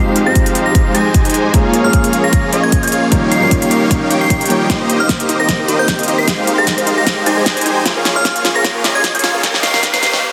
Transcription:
Already playing: F3 G#3 C4 D#4 G4 C5 F5
0.16 closed hi-hat
0.25 F3 G#3 C4 D#4 A#6
0.35 kick, closed hi-hat
0.46 closed hi-hat
0.55 closed hi-hat
0.66 A#6
0.75 kick, closed hi-hat
0.94 G#3 D#4 G4 C5 G#5 A#6, closed hi-hat
1.14 kick, closed hi-hat
1.25 closed hi-hat
1.30 closed hi-hat
1.34 closed hi-hat
1.53 F3 G#3 A#3 C#4 F4 G#4 F5, kick, closed hi-hat
1.74 closed hi-hat
1.83 F3 G#3 A#3 C#4 F6
1.87 G#4
1.93 kick, closed hi-hat
2.04 closed hi-hat
2.13 closed hi-hat
2.24 A#6
2.33 kick, closed hi-hat
2.53 A#3 F4 G#4 C#5 D#5, closed hi-hat
2.63 G#6
2.72 G#6, kick, closed hi-hat
2.83 G#6, closed hi-hat
2.88 closed hi-hat
2.92 A#3 F4 G#4 C#5 F5, closed hi-hat
3.11 D#3 G3 A#3 C#4 D#4 F4 G4 C#5 F5, kick, closed hi-hat
3.32 C7, closed hi-hat
3.40 D#3 G3 A#3 C#4 C7
3.44 F4
3.51 kick, closed hi-hat
3.62 C7, closed hi-hat
3.71 C7, closed hi-hat
3.91 kick, closed hi-hat
4.10 A#3 D#4 G4 C#5 G5, closed hi-hat
4.21 C7
4.30 kick, closed hi-hat
4.41 closed hi-hat
4.46 D#3 G3, closed hi-hat
4.50 A#3 C#4 F4, closed hi-hat
4.70 D#3 A#3 C4 D#4 G4 A#4 C5, kick, snare, closed hi-hat, riser
4.81 A#4
4.90 D#4, closed hi-hat
5.00 C5 F6
5.09 D#4, kick, snare, closed hi-hat
5.20 D#5, closed hi-hat
5.29 D#4, closed hi-hat
5.40 A#4 A#6
5.49 D#4, kick, snare, closed hi-hat
5.60 A#4
5.68 A#3 D#4 G4 C5 D#5, closed hi-hat
5.79 C5 G6
5.88 D#4, kick, snare, closed hi-hat
5.99 D#5, closed hi-hat
6.03 closed hi-hat
6.08 A#3 D#4 G4 C5 D#5, closed hi-hat
6.18 A#4 C7
6.27 F3 G#3 D#4 G4 F5, kick, snare, closed hi-hat
6.39 G4
6.47 D#4, closed hi-hat
6.58 G#4 A#6
6.67 D#4, kick, snare, closed hi-hat
6.78 C5, closed hi-hat
6.87 D#4, closed hi-hat
6.98 G4 A#6
7.07 D#4, kick, snare, closed hi-hat
7.17 G4
7.26 G#3 D#4 G4 C5 G#5 A#6, closed hi-hat
7.37 G#4
7.46 D#4, kick, snare, closed hi-hat
7.57 C5, closed hi-hat
7.61 closed hi-hat
7.66 D#4, closed hi-hat
7.77 G4
7.85 A#3 C#4 F4 G#4 C#5 F5, kick, snare, closed hi-hat
7.96 A#4
8.05 F4, snare, closed hi-hat
8.16 C#5 F6
8.25 F4, kick, snare, closed hi-hat
8.36 F5, closed hi-hat
8.45 F4, snare, closed hi-hat
8.55 A#4 A#6
8.65 F4, kick, snare, closed hi-hat
8.75 A#4
8.84 A#3 F4 G#4 C#5 D#5, snare, closed hi-hat
8.95 C#5 G#6
9.04 F4, kick, snare, closed hi-hat
9.15 F5 G#6, closed hi-hat
9.19 closed hi-hat
9.24 A#3 F4 G#4 C#5 F5, snare, closed hi-hat
9.34 A#4
9.43 F3 A#3 D#4 G4 C#5, kick, snare, closed hi-hat
9.54 G4, snare
9.63 D#4 C7, snare, closed hi-hat
9.74 A#4 C7, snare
9.83 D#4, kick, snare, closed hi-hat
9.93 C#5 C7, snare, closed hi-hat
10.02 D#4 C7, snare, closed hi-hat
10.13 G4, snare

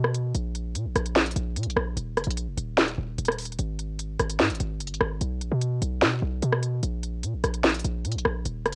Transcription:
Already playing: B2
0.04 cross-stick
0.14 closed hi-hat
0.35 A#1, closed hi-hat
0.55 closed hi-hat
0.75 A#2, closed hi-hat
0.85 A#1
0.95 A#1, cross-stick, closed hi-hat
1.06 closed hi-hat
1.16 snare, closed hi-hat
1.21 closed hi-hat
1.26 closed hi-hat
1.31 closed hi-hat
1.36 A#1, closed hi-hat
1.56 A#2, closed hi-hat
1.63 A#1, closed hi-hat
1.70 closed hi-hat
1.76 A#1, cross-stick
1.97 D#1, closed hi-hat
2.17 F#1, cross-stick, closed hi-hat
2.24 A#1, closed hi-hat
2.31 closed hi-hat
2.37 closed hi-hat
2.47 F1
2.57 D#1, closed hi-hat
2.78 snare, closed hi-hat
2.88 closed hi-hat
2.98 D#1
3.18 D#1, closed hi-hat
3.25 cross-stick, closed hi-hat
3.32 closed hi-hat
3.39 closed hi-hat, open hi-hat
3.45 closed hi-hat
3.52 closed hi-hat
3.59 G#1, closed hi-hat
3.79 closed hi-hat
3.99 closed hi-hat
4.20 G#1, cross-stick, closed hi-hat
4.30 closed hi-hat
4.40 G#2, snare, closed hi-hat
4.45 closed hi-hat
4.50 G#1, closed hi-hat
4.55 closed hi-hat
4.60 G#1, closed hi-hat
4.81 F#1, closed hi-hat
4.87 G#1, closed hi-hat
4.94 closed hi-hat
5.01 G#1, cross-stick
5.21 B1, closed hi-hat
5.41 A#1, closed hi-hat
5.52 B2
5.61 closed hi-hat
5.82 B1, closed hi-hat
6.02 B2, snare, closed hi-hat
6.22 B1
6.43 B2, closed hi-hat
6.53 cross-stick
6.63 closed hi-hat
6.83 A#1, closed hi-hat
7.03 closed hi-hat
7.24 A#2, closed hi-hat
7.34 A#1
7.44 A#1, cross-stick, closed hi-hat
7.54 closed hi-hat
7.64 snare, closed hi-hat
7.69 closed hi-hat
7.74 closed hi-hat
7.79 closed hi-hat
7.85 A#1, closed hi-hat
8.05 A#2, closed hi-hat
8.12 A#1, closed hi-hat
8.18 closed hi-hat
8.25 A#1, cross-stick
8.45 D#1, closed hi-hat
8.66 F#1, cross-stick, closed hi-hat

